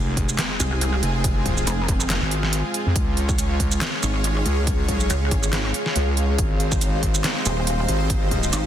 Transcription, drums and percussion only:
0.17 kick medium
0.17 closed hi-hat medium
0.29 shaker medium
0.39 snare loud
0.39 clap medium
0.39 closed hi-hat medium
0.60 closed hi-hat medium
0.60 shaker medium
0.81 closed hi-hat medium
1.03 closed hi-hat medium
1.24 kick loud
1.24 closed hi-hat medium
1.46 kick medium
1.46 closed hi-hat medium
1.57 shaker medium
1.67 closed hi-hat medium
1.67 shaker medium
1.88 kick loud
1.88 closed hi-hat medium
2.00 shaker medium
2.10 snare loud
2.10 clap loud
2.10 closed hi-hat medium
2.31 closed hi-hat medium
2.43 snare soft
2.53 closed hi-hat medium
2.74 closed hi-hat medium
2.96 kick loud
2.96 closed hi-hat medium
3.17 closed hi-hat soft
3.29 kick loud
3.29 shaker medium
3.38 closed hi-hat medium
3.38 shaker medium
3.60 kick medium
3.60 closed hi-hat medium
3.72 shaker medium
3.81 snare loud
3.81 clap loud
3.81 closed hi-hat medium
4.03 closed hi-hat medium
4.03 shaker medium
4.24 closed hi-hat medium
4.46 closed hi-hat medium
4.67 kick loud
4.67 closed hi-hat medium
4.88 kick medium
4.88 closed hi-hat soft
5.00 shaker medium
5.10 closed hi-hat medium
5.10 shaker medium
5.31 kick loud
5.31 closed hi-hat medium
5.43 shaker medium
5.53 snare loud
5.53 clap medium
5.53 closed hi-hat medium
5.74 closed hi-hat medium
5.86 snare soft
5.96 closed hi-hat medium
6.17 closed hi-hat soft
6.38 kick loud
6.38 closed hi-hat medium
6.60 closed hi-hat soft
6.72 kick loud
6.72 shaker medium
6.81 closed hi-hat medium
6.81 shaker medium
7.03 kick medium
7.03 closed hi-hat medium
7.15 shaker medium
7.24 snare loud
7.24 clap medium
7.24 closed hi-hat medium
7.46 closed hi-hat medium
7.46 shaker medium
7.67 closed hi-hat medium
7.89 closed hi-hat medium
8.10 kick loud
8.10 closed hi-hat medium
8.31 kick medium
8.31 closed hi-hat medium
8.43 shaker medium
8.53 closed hi-hat medium
8.53 shaker medium

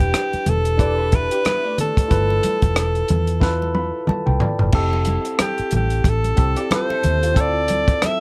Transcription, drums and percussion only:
0.00 kick medium
0.14 cross-stick loud
0.14 closed hi-hat medium
0.14 muted conga soft
0.33 closed hi-hat soft
0.33 muted conga soft
0.46 closed hi-hat medium
0.46 high conga medium
0.46 low conga medium
0.65 closed hi-hat soft
0.79 kick medium
0.79 closed hi-hat medium
0.79 muted conga soft
1.12 kick medium
1.12 closed hi-hat medium
1.31 closed hi-hat soft
1.45 cross-stick medium
1.45 closed hi-hat medium
1.45 high conga medium
1.78 closed hi-hat medium
1.78 low conga medium
1.97 kick medium
1.97 closed hi-hat medium
2.11 kick medium
2.11 closed hi-hat medium
2.11 muted conga soft
2.30 muted conga soft
2.43 closed hi-hat medium
2.43 high conga medium
2.62 kick medium
2.62 closed hi-hat soft
2.76 cross-stick loud
2.76 closed hi-hat medium
2.76 muted conga soft
2.95 closed hi-hat soft
3.08 closed hi-hat medium
3.08 high conga medium
3.08 low conga medium
3.27 closed hi-hat soft
3.41 kick medium
3.41 snare soft
3.41 muted conga soft
3.62 muted conga soft
3.75 high tom medium
4.07 mid tom medium
4.07 high conga medium
4.27 mid tom medium
4.40 floor tom medium
4.40 low conga medium
4.59 floor tom medium
4.72 kick medium
4.72 crash medium
4.72 muted conga soft
4.93 muted conga soft
5.05 closed hi-hat medium
5.05 high conga medium
5.25 closed hi-hat soft
5.39 cross-stick loud
5.39 closed hi-hat medium
5.39 muted conga soft
5.39 high conga soft
5.58 closed hi-hat soft
5.71 closed hi-hat medium
5.71 high conga medium
5.71 low conga medium
5.90 closed hi-hat soft
6.04 kick medium
6.04 closed hi-hat medium
6.04 muted conga soft
6.24 closed hi-hat soft
6.24 muted conga soft
6.37 kick medium
6.37 closed hi-hat medium
6.56 closed hi-hat medium
6.71 cross-stick loud
6.71 closed hi-hat medium
6.71 muted conga soft
6.71 high conga medium
6.90 muted conga soft
7.03 closed hi-hat medium
7.03 low conga medium
7.23 closed hi-hat medium
7.36 kick medium
7.36 closed hi-hat medium
7.68 closed hi-hat medium
7.68 high conga medium
7.88 kick medium
7.88 closed hi-hat soft
8.02 cross-stick loud
8.02 closed hi-hat medium
8.02 muted conga soft
8.02 high conga medium

